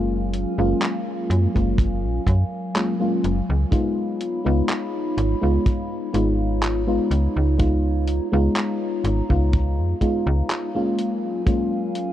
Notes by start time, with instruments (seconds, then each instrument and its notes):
Already playing: fm bass F#1, ambient pad F#3 A#4 F5 G#5, fm electric piano G#3 A#3 C#4 F4
0.34 closed hi-hat
0.58 fm bass F#1, fm electric piano G#3 A#3 C#4 F4
0.82 clap, closed hi-hat
1.30 fm bass F#2, closed hi-hat
1.54 fm bass F#1, fm electric piano G#3 A#3 C#4 F4, kick, closed hi-hat
1.78 kick, closed hi-hat
2.04 fm bass A#1
2.27 fm bass F#2, kick, closed hi-hat
2.75 fm electric piano G#3 A#3 C#4 F4, clap, closed hi-hat
3.00 fm electric piano G#3 A#3 C#4 F4
3.24 fm bass F#1, closed hi-hat
3.49 fm bass C#2
3.71 fm electric piano G#3 B3 D#4 F4, ambient pad D#4 C#5 B5, kick, closed hi-hat
4.21 closed hi-hat
4.44 fm bass C#2, fm electric piano G#3 B3 D#4 F4
4.69 clap, closed hi-hat
5.17 fm bass G#1, closed hi-hat
5.41 fm bass C#2, fm electric piano G#3 B3 D#4 F4
5.66 kick, closed hi-hat
6.13 fm bass G#1, fm electric piano G#3 B3 D#4 F4, closed hi-hat
6.63 clap, closed hi-hat
6.87 fm electric piano G#3 B3 D#4 F4
7.11 fm bass C#2, closed hi-hat
7.36 fm bass C#2
7.58 fm electric piano G#3 B3 D#4 F4, ambient pad A#5, kick, closed hi-hat
8.08 closed hi-hat
8.32 fm bass C#2, fm electric piano G#3 B3 D#4 F4
8.56 clap, closed hi-hat
9.04 fm bass G#1, closed hi-hat
9.29 fm bass C#2, fm electric piano G#3 B3 D#4 F4, kick
9.53 kick, closed hi-hat
9.78 fm bass F2
10.01 fm electric piano G#3 B3 D#4 F4, kick, closed hi-hat
10.26 fm bass C#2
10.50 clap, closed hi-hat
10.75 fm electric piano G#3 A#3 C#4 F4
10.98 ambient pad F#3 A#4 F5 G#5, closed hi-hat
11.46 fm electric piano G#3 A#3 C#4 F4, kick, closed hi-hat
11.95 closed hi-hat